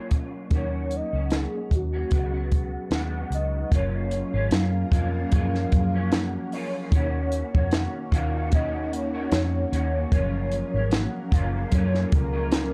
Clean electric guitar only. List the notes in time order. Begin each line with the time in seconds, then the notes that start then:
Already playing: F#3 A#3 C#4 F4
0.51 D#3 A#3 C#4 F#4
1.12 A#3 C#4 F#4
1.93 A#3 C#4 F#4
2.11 C#3 G#3 B3 F#4
2.33 G#3 B3 F#4
2.91 C#3 G#3 B3 F#4
3.71 F#3 A#3 C#4 F4
4.33 A#3 C#4 F4
4.92 A#3 C#4 F4
5.32 F#3 A#3 C#4 F4
5.94 F#3 A#3 C#4
6.53 F#3 A#3 C#4 F4
6.92 D#3 A#3 C#4 F#4
7.54 A#3 C#4 F#4
8.11 D#3 A#3 C#4 F#4
8.51 D#3 A#3 C#4 F#4
9.13 D#3 A#3 C#4 F#4
9.71 D#3 A#3 C#4 F#4
10.11 F#3 A#3 C#4 F4
10.75 A#3 C#4
11.31 F#3 A#3 C#4 F4
11.71 F#3 A#3 C#4 F4
12.33 F#3 A#3 C#4 F4